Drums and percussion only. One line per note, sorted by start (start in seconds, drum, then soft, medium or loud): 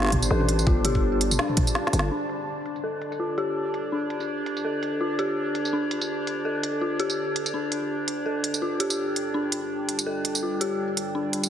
0.02 snare medium
0.04 snare medium
0.06 snare medium
0.08 snare medium
0.10 kick medium
0.10 snare loud
0.10 closed hi-hat medium
0.10 mid tom medium
0.22 tambourine medium
0.41 mid tom soft
0.49 closed hi-hat medium
0.59 tambourine soft
0.67 kick loud
0.85 closed hi-hat medium
0.85 mid tom medium
0.95 kick medium
1.21 closed hi-hat medium
1.31 mid tom soft
1.31 tambourine medium
1.39 snare loud
1.49 mid tom soft
1.57 kick loud
1.57 closed hi-hat medium
1.57 mid tom medium
1.67 tambourine medium
1.75 snare medium
1.87 snare medium
1.93 closed hi-hat medium
1.93 tambourine soft
1.99 snare medium
2.29 closed hi-hat medium
2.66 closed hi-hat medium
2.76 tambourine medium
3.02 closed hi-hat medium
3.12 tambourine medium
3.38 closed hi-hat medium
3.74 closed hi-hat medium
4.10 closed hi-hat medium
4.20 tambourine medium
4.46 closed hi-hat medium
4.57 tambourine medium
4.83 closed hi-hat medium
5.19 closed hi-hat medium
5.55 closed hi-hat medium
5.65 tambourine medium
5.91 closed hi-hat medium
6.01 tambourine medium
6.27 closed hi-hat medium
6.63 closed hi-hat medium
7.00 closed hi-hat medium
7.10 tambourine medium
7.36 closed hi-hat medium
7.46 tambourine medium
7.72 closed hi-hat medium
8.08 closed hi-hat medium
8.44 closed hi-hat medium
8.54 tambourine medium
8.80 closed hi-hat medium
8.90 tambourine medium
9.16 closed hi-hat medium
9.52 closed hi-hat medium
9.89 closed hi-hat medium
9.99 tambourine medium
10.25 closed hi-hat medium
10.35 tambourine medium
10.61 closed hi-hat medium
10.97 closed hi-hat medium
11.33 closed hi-hat medium
11.43 tambourine medium